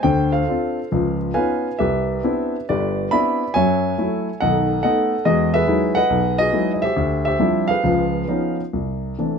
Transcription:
0.03 D2 D3 C5 G5
0.32 A4 C5 F5
0.48 C4 D4 F4
0.92 C#2 F3
1.34 B3 C#4 D#4 F4 B4 F5 G#5
1.79 C2 G4 B4 E5
2.24 B3 C4 D4 E4
2.69 G1 G4 B4 D5
3.11 B3 C4 D4 E4 D5 E5 B5
3.54 F#2 F#3 C#5 E5 G#5
3.98 F#3 A3 E4
4.40 B1 D#3 A4 D#5 F#5
4.83 A3 B3 D#4 A4 D#5 F#5
5.25 E2 G#3 F#4 G#4 D#5
5.54 G#4 B4 E5
5.67 F#3 G#3 D#4 E4
5.95 B4 D#5 F#5
6.10 B1
6.38 F#4 G#4 D#5
6.53 F#3 G#3 D#4 E4
6.74 D#5
6.82 G4 C5 E5
6.96 D2
7.25 G4 C5 E5
7.39 F3 G3 C4 D4 E4
7.68 G#4 B4 F5
7.83 C#2 F3
8.28 F3 B3 C#4 D#4
8.73 C2
9.19 E3 A3 C4 D4

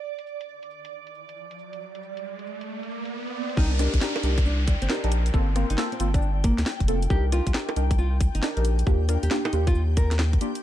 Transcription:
Already playing: D5
0.04 riser, shaker
0.19 closed hi-hat
0.26 shaker
0.41 closed hi-hat, shaker
0.49 shaker
0.63 closed hi-hat
0.71 shaker
0.85 closed hi-hat, shaker
0.93 shaker
1.07 closed hi-hat
1.15 shaker
1.29 closed hi-hat, shaker
1.37 shaker
1.51 closed hi-hat
1.59 shaker
1.73 closed hi-hat, shaker
1.81 shaker
1.95 closed hi-hat
2.03 shaker
2.17 closed hi-hat, shaker
2.25 shaker
2.39 closed hi-hat
2.47 shaker
2.61 closed hi-hat, shaker
2.69 shaker
2.83 closed hi-hat
2.91 shaker
3.05 closed hi-hat, shaker
3.13 shaker
3.27 closed hi-hat
3.35 shaker
3.50 closed hi-hat, shaker
3.57 C2 D4 D#4 G4 A#4 G5, kick, downlifter, shaker
3.79 D4 D#4 G4 A#4, cross-stick, closed hi-hat, shaker
3.94 C2, kick, closed hi-hat, shaker
4.01 D4 D#4 G4 A#4, snare, shaker
4.16 closed hi-hat, high bongo
4.23 C2 D4 D#4 G4 A#4, closed hi-hat, shaker
4.38 kick, cross-stick, closed hi-hat, shaker
4.45 D4, shaker
4.68 kick, closed hi-hat, shaker
4.82 G1 C4, closed hi-hat, shaker
4.90 D4 D#4 G4 A#4, snare, shaker
5.04 A#1 D4 D#4 G4 A#4, closed hi-hat
5.12 closed hi-hat, shaker
5.26 closed hi-hat, shaker
5.34 G1 A#3 C4 F4 A4, kick, shaker
5.56 A#3 C4 F4 A#4, cross-stick, closed hi-hat, shaker
5.70 G1 D#4, closed hi-hat, shaker
5.78 A#3 C4 F4 A4, snare, shaker
5.92 C4, closed hi-hat
6.00 G1 A#3 C4 F4 A4, closed hi-hat, shaker
6.14 D4, kick, cross-stick, closed hi-hat, shaker
6.22 shaker
6.44 A#3, kick, closed hi-hat, shaker
6.58 D2, snare, closed hi-hat, shaker
6.66 snare, shaker
6.80 F1, kick, closed hi-hat
6.88 A#3 C4 F4 A4, closed hi-hat, shaker
7.02 closed hi-hat, shaker
7.10 C2 D4 D#4 G4 A#4, kick, shaker
7.32 D4 D#4 F4 G4 A#4, cross-stick, closed hi-hat, shaker
7.47 C2, kick, closed hi-hat, shaker
7.54 D4 D#4 G4 A#4, snare, shaker
7.69 closed hi-hat, high bongo
7.76 C2 D4 D#4 G4 A#4, closed hi-hat, shaker
7.91 kick, cross-stick, closed hi-hat, shaker
7.98 F4, shaker
8.21 kick, closed hi-hat, shaker
8.35 G1 D#4, closed hi-hat, shaker
8.42 D4 D#4 G4 A#4, snare, shaker
8.57 A#1 D4 D#4 G4 A#4, closed hi-hat
8.65 closed hi-hat, shaker
8.79 closed hi-hat, shaker
8.87 D#2 A#3 D4 F4 G4, kick, shaker
9.09 A#3 D4 F4 A#4, cross-stick, closed hi-hat, shaker
9.23 D#2 G4, closed hi-hat, shaker
9.31 A#3 D4 F4 G4, snare, shaker
9.45 D#4, closed hi-hat, high bongo
9.53 D#2 A#3 D4 F4 G4, closed hi-hat, shaker
9.67 F4, kick, cross-stick, closed hi-hat, shaker
9.75 D#2, shaker
9.97 A#4, kick, closed hi-hat, shaker
10.11 snare, closed hi-hat, shaker
10.19 snare, shaker
10.33 kick, closed hi-hat
10.41 A#3 D4 F4 G4, closed hi-hat, shaker
10.55 closed hi-hat, shaker

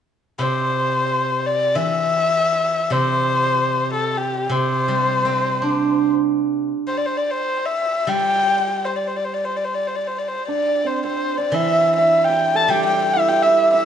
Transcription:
0.38 C3 C5
1.46 D5
1.75 E3 E5
2.90 C3 C5
3.93 A4
4.17 G4
4.49 C3 C5
4.88 G3
5.25 C4
5.62 D4
6.87 C5
6.97 D5
7.06 C5
7.17 D5
7.31 C5
7.66 E5
8.07 G3 G5
8.85 C5
8.96 D5
9.07 C5
9.17 D5
9.24 C5
9.34 D5
9.45 C5
9.56 D5
9.64 C5
9.74 D5
9.87 C5
9.96 D5
10.07 C5
10.19 D5
10.28 C5
10.48 D4 D5
10.84 C4 C5
11.04 C4 C5
11.38 D4 D5
11.52 E3 E4 E5
11.96 E4 E5
12.24 G5
12.29 G4
12.55 A4 A5
12.68 G3 G4 G5
12.86 G4 G5
13.13 E4 E5
13.28 G4 G5
13.43 E4 E5
13.74 E4 E5

